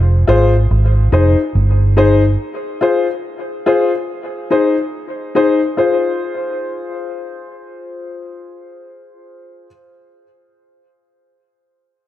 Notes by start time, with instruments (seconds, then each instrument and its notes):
Already playing: fingered electric bass F1
0.27 fingered electric bass G#1, upright piano F4 G#4 C5
0.71 fingered electric bass G#1
1.12 fingered electric bass F1, upright piano D#4 G#4 C5
1.55 fingered electric bass G1
1.97 upright piano D#4 G#4 C5
2.81 upright piano F4 G#4 C5
3.66 upright piano F4 G#4 C5
4.50 upright piano D#4 G#4 C5
5.35 upright piano D#4 G#4 C5
5.77 upright piano F4 G#4 C5